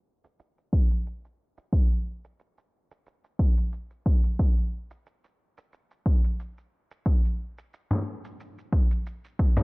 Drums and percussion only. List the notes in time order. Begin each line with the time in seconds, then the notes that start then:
0.24 shaker
0.39 shaker
0.58 shaker
0.73 kick
0.91 shaker
1.07 shaker
1.25 shaker
1.57 shaker
1.73 kick, shaker
1.91 shaker
2.24 shaker
2.39 shaker
2.58 shaker
2.91 shaker
3.06 shaker
3.24 shaker
3.39 kick
3.57 shaker
3.73 shaker
3.90 shaker
4.06 kick
4.24 shaker
4.39 kick, shaker
4.57 shaker
4.91 shaker
5.06 shaker
5.24 shaker
5.57 shaker
5.73 shaker
5.91 shaker
6.06 kick
6.24 shaker
6.40 shaker
6.58 shaker
6.91 shaker
7.06 kick, shaker
7.25 shaker
7.58 shaker
7.74 shaker
7.91 frame drum, shaker
8.25 shaker
8.40 shaker
8.58 shaker
8.73 kick
8.91 shaker
9.06 shaker
9.24 shaker
9.39 kick
9.57 frame drum, shaker